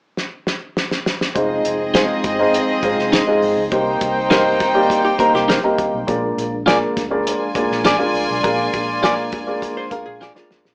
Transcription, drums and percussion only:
0.17 snare
0.47 snare
0.77 snare
0.91 snare
1.06 snare
1.21 snare
1.36 kick, closed hi-hat
1.65 closed hi-hat
1.95 snare, closed hi-hat
2.24 kick, closed hi-hat
2.54 closed hi-hat
2.83 kick, closed hi-hat
2.99 snare
3.13 snare, closed hi-hat
3.42 open hi-hat
3.72 kick, closed hi-hat
4.01 kick, closed hi-hat
4.31 snare, closed hi-hat
4.60 kick, snare, closed hi-hat
4.90 kick, closed hi-hat
5.19 kick, closed hi-hat
5.35 snare
5.50 snare, closed hi-hat
5.78 kick, closed hi-hat
6.08 kick, closed hi-hat
6.38 closed hi-hat
6.68 snare, closed hi-hat
6.97 kick, snare, closed hi-hat
7.27 closed hi-hat
7.55 kick, closed hi-hat
7.72 snare
7.85 snare, closed hi-hat
8.15 open hi-hat
8.44 kick, closed hi-hat
8.74 kick, closed hi-hat
9.04 snare, closed hi-hat
9.32 kick, closed hi-hat
9.62 kick, closed hi-hat
9.91 kick, closed hi-hat
10.22 snare
10.36 snare
10.51 snare
10.65 snare

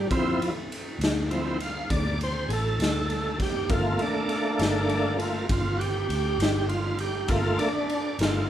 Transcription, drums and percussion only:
0.11 kick, ride
0.42 ride
0.72 ride
1.01 snare, ride
1.31 ride
1.60 ride
1.90 kick, ride
2.21 ride
2.50 ride
2.80 snare, ride
3.10 ride
3.40 kick, snare, ride
3.70 kick, ride
3.99 ride
4.29 ride
4.59 snare, ride
4.89 ride
5.20 ride
5.49 kick, ride
5.81 ride
6.10 ride
6.40 snare, ride
6.69 ride
6.98 ride
7.28 kick, ride
7.59 ride
7.89 ride
8.19 snare, ride

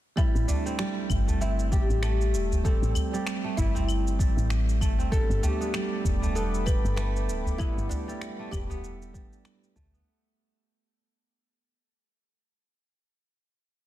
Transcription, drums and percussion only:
0.17 kick, claves, shaker
0.36 shaker
0.49 udu, shaker
0.67 shaker
0.79 finger snap, shaker
1.10 kick, claves, shaker
1.28 udu, shaker
1.42 shaker
1.59 shaker
1.72 kick, shaker
1.90 shaker
2.03 finger snap, claves, shaker
2.21 shaker
2.34 shaker
2.52 udu, shaker
2.65 kick, shaker
2.83 shaker
2.95 udu, claves, shaker
3.14 shaker
3.27 finger snap, shaker
3.57 kick, shaker
3.76 udu, shaker
3.89 claves, shaker
4.07 shaker
4.19 kick, shaker
4.38 shaker
4.50 finger snap, shaker
4.69 shaker
4.81 kick, claves, shaker
4.99 udu, shaker
5.12 kick, shaker
5.31 shaker
5.44 udu, shaker
5.62 shaker
5.74 finger snap, claves, shaker
6.05 kick, shaker
6.22 udu, shaker
6.36 shaker
6.54 shaker
6.67 kick, claves, shaker
6.85 shaker
6.97 finger snap, shaker
7.16 shaker
7.29 shaker
7.46 udu, shaker
7.60 kick, claves, shaker
7.78 shaker
7.91 udu, shaker
8.09 shaker
8.21 finger snap, shaker
8.52 kick, claves, shaker
8.70 udu, shaker
8.84 shaker
9.02 shaker
9.14 kick, shaker
9.33 shaker
9.45 finger snap, claves, shaker
9.64 shaker
9.76 kick, shaker
9.94 udu, shaker

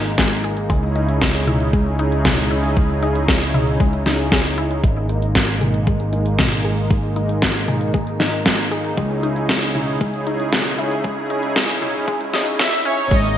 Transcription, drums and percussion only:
0.05 closed hi-hat
0.18 kick, snare, closed hi-hat
0.44 closed hi-hat
0.57 closed hi-hat
0.70 kick, closed hi-hat
0.96 closed hi-hat
1.09 closed hi-hat
1.22 kick, snare, closed hi-hat
1.47 closed hi-hat, mid tom
1.60 closed hi-hat
1.73 kick, closed hi-hat
1.99 closed hi-hat
2.12 closed hi-hat
2.25 kick, snare, closed hi-hat, mid tom
2.51 closed hi-hat
2.64 closed hi-hat
2.77 kick, closed hi-hat
3.03 closed hi-hat
3.15 closed hi-hat
3.28 kick, snare, closed hi-hat
3.41 closed hi-hat
3.54 closed hi-hat, mid tom
3.67 closed hi-hat
3.80 kick, closed hi-hat
3.93 closed hi-hat
4.06 snare, closed hi-hat
4.19 closed hi-hat
4.32 kick, snare, closed hi-hat
4.58 closed hi-hat
4.71 closed hi-hat
4.84 kick, closed hi-hat
5.09 closed hi-hat
5.22 closed hi-hat
5.35 kick, snare, closed hi-hat
5.61 closed hi-hat, mid tom
5.74 closed hi-hat
5.87 kick, closed hi-hat
6.00 closed hi-hat
6.13 closed hi-hat
6.26 closed hi-hat
6.39 kick, snare, closed hi-hat, mid tom
6.65 closed hi-hat
6.77 closed hi-hat
6.90 kick, closed hi-hat
7.16 closed hi-hat
7.29 closed hi-hat
7.42 kick, snare, closed hi-hat
7.68 closed hi-hat, mid tom
7.81 closed hi-hat
7.94 kick, closed hi-hat
8.07 closed hi-hat
8.20 snare, closed hi-hat
8.33 closed hi-hat
8.46 kick, snare, closed hi-hat
8.72 closed hi-hat
8.85 closed hi-hat
8.97 kick, closed hi-hat
9.23 closed hi-hat
9.36 closed hi-hat
9.49 kick, snare, closed hi-hat
9.75 closed hi-hat, mid tom
9.88 closed hi-hat
10.01 kick, closed hi-hat
10.14 closed hi-hat
10.27 closed hi-hat
10.40 closed hi-hat
10.53 kick, snare, closed hi-hat, mid tom
10.78 closed hi-hat
10.91 closed hi-hat
11.04 kick, closed hi-hat
11.30 closed hi-hat
11.43 closed hi-hat
11.56 kick, snare, closed hi-hat
11.82 closed hi-hat, mid tom
11.95 closed hi-hat
12.08 kick, closed hi-hat
12.21 closed hi-hat
12.34 snare, closed hi-hat
12.46 closed hi-hat
12.59 kick, snare, closed hi-hat
12.85 closed hi-hat
12.98 closed hi-hat
13.11 kick, closed hi-hat, crash

